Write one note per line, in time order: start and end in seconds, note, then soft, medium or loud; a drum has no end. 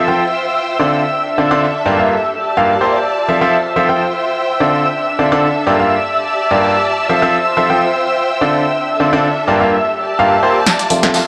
0.00 1.29 F4 medium
0.00 1.29 C5 medium
0.00 3.03 E5 medium
0.00 1.29 G5 medium
0.00 3.03 E6 medium
0.08 0.22 F3 medium
0.08 0.22 C4 medium
0.08 0.22 F4 medium
0.08 0.22 A4 medium
0.08 0.22 G5 medium
0.79 1.02 D3 medium
0.79 1.02 C4 medium
0.79 1.02 F4 medium
0.79 1.02 A4 medium
0.79 1.02 D5 medium
0.90 2.33 D4 medium
1.23 2.33 A4 medium
1.34 2.33 E5 medium
1.38 1.49 D3 medium
1.38 1.49 C4 medium
1.38 1.49 F4 medium
1.38 1.49 A4 medium
1.38 1.49 D5 medium
1.51 1.65 D3 medium
1.51 1.65 C4 medium
1.51 1.65 F4 medium
1.51 1.65 A4 medium
1.51 1.65 D5 loud
1.86 1.97 G2 medium
1.86 1.97 A#3 medium
1.86 1.97 F4 medium
1.86 1.97 G4 medium
1.86 3.72 G4 medium
1.86 1.97 D5 medium
1.99 2.12 G2 medium
1.99 2.12 A#3 medium
1.99 2.12 F4 medium
1.99 2.12 G4 medium
1.99 2.12 F5 medium
2.40 3.72 D5 medium
2.40 3.72 A5 medium
2.57 2.72 G2 medium
2.57 2.72 A#3 medium
2.57 2.72 F4 medium
2.57 2.72 G4 medium
2.57 2.72 F5 medium
2.81 2.96 A#3 medium
2.81 2.96 F4 medium
2.81 2.96 G4 medium
2.81 2.96 C5 medium
3.05 5.10 F4 medium
3.05 10.65 E5 medium
3.05 10.65 E6 medium
3.29 3.39 F3 medium
3.29 3.39 C4 medium
3.29 3.39 F4 medium
3.29 3.39 A4 medium
3.29 3.39 E5 medium
3.41 3.55 F3 medium
3.41 3.55 C4 medium
3.41 3.55 F4 medium
3.41 3.55 A4 medium
3.41 5.10 C5 medium
3.41 3.55 E5 medium
3.76 3.87 F3 medium
3.76 3.87 C4 medium
3.76 3.87 F4 medium
3.76 3.87 A4 medium
3.76 3.87 E5 medium
3.80 5.10 G5 medium
3.89 4.03 F3 medium
3.89 4.03 C4 medium
3.89 4.03 F4 medium
3.89 4.03 A4 medium
3.89 4.03 G5 medium
4.60 4.83 D3 medium
4.60 4.83 C4 medium
4.60 4.83 F4 medium
4.60 4.83 A4 medium
4.60 4.83 D5 medium
4.71 6.14 D4 medium
5.15 6.14 A4 medium
5.15 6.14 E5 medium
5.19 5.30 D3 medium
5.19 5.30 C4 medium
5.19 5.30 F4 medium
5.19 5.30 A4 medium
5.19 5.30 D5 medium
5.32 5.45 D3 medium
5.32 5.46 C4 medium
5.32 5.46 F4 medium
5.32 5.46 A4 medium
5.32 5.46 D5 loud
5.67 5.78 G2 medium
5.67 5.78 A#3 medium
5.67 5.78 F4 medium
5.67 7.53 G4 medium
5.67 5.78 G4 medium
5.67 5.78 D5 medium
5.80 5.93 G2 medium
5.80 5.93 A#3 medium
5.80 5.93 F4 medium
5.80 5.93 G4 medium
5.80 7.53 D5 medium
5.80 5.93 F5 medium
6.21 7.53 A5 medium
6.51 6.74 G2 medium
6.51 6.74 A#3 medium
6.51 6.74 F4 medium
6.51 6.74 G4 medium
6.51 6.74 D5 medium
6.86 8.91 F4 medium
7.09 7.20 F3 medium
7.09 7.20 C4 medium
7.09 7.20 F4 medium
7.09 7.20 A4 medium
7.09 8.91 C5 medium
7.09 7.20 E5 medium
7.22 7.36 F3 medium
7.22 7.36 C4 medium
7.22 7.36 F4 medium
7.22 7.36 A4 medium
7.22 7.36 E5 loud
7.57 7.68 F3 medium
7.57 7.68 C4 medium
7.57 7.68 F4 medium
7.57 7.68 A4 medium
7.57 7.68 E5 medium
7.57 8.91 G5 medium
7.70 7.84 F3 medium
7.70 7.84 C4 medium
7.70 7.84 F4 medium
7.70 7.84 A4 medium
7.70 7.84 G5 medium
8.41 8.64 D3 medium
8.41 8.64 C4 medium
8.41 8.64 F4 medium
8.41 8.64 A4 medium
8.41 8.64 D5 medium
8.52 9.95 D4 medium
8.96 9.95 A4 medium
8.96 9.95 E5 medium
9.00 9.11 D3 medium
9.00 9.11 C4 medium
9.00 9.11 F4 medium
9.00 9.11 A4 medium
9.00 9.11 D5 medium
9.13 9.26 D3 medium
9.13 9.26 C4 medium
9.13 9.26 F4 medium
9.13 9.26 A4 medium
9.13 9.26 D5 loud
9.47 9.58 G2 medium
9.47 9.58 A#3 medium
9.47 9.58 F4 medium
9.47 9.58 G4 medium
9.47 11.27 G4 medium
9.47 9.58 D5 medium
9.60 9.74 G2 medium
9.60 9.74 A#3 medium
9.60 9.74 F4 medium
9.60 9.74 G4 medium
9.60 9.74 F5 medium
10.02 11.27 D5 medium
10.02 11.27 A5 medium
10.19 10.34 G2 medium
10.19 10.34 A#3 medium
10.19 10.34 F4 medium
10.19 10.34 G4 medium
10.19 10.34 F5 medium
10.43 10.58 A#3 medium
10.43 10.58 F4 medium
10.43 10.58 G4 medium
10.43 10.58 C5 medium
10.66 10.96 F1 loud
10.66 11.27 F4 medium
10.66 11.27 E5 medium
10.66 11.27 E6 medium
10.66 snare soft
10.66 closed hi-hat medium
10.66 tambourine medium
10.79 snare soft
10.79 closed hi-hat medium
10.90 11.01 F3 medium
10.90 11.01 C4 medium
10.90 11.01 F4 medium
10.90 11.01 A4 medium
10.90 11.01 E5 medium
10.90 open hi-hat medium
10.90 tambourine medium
11.03 11.10 F1 loud
11.03 11.17 F3 medium
11.03 11.17 C4 medium
11.03 11.17 F4 medium
11.03 11.17 A4 medium
11.03 11.17 E5 loud
11.03 snare soft
11.03 closed hi-hat medium
11.14 snare loud
11.14 closed hi-hat soft
11.14 tambourine medium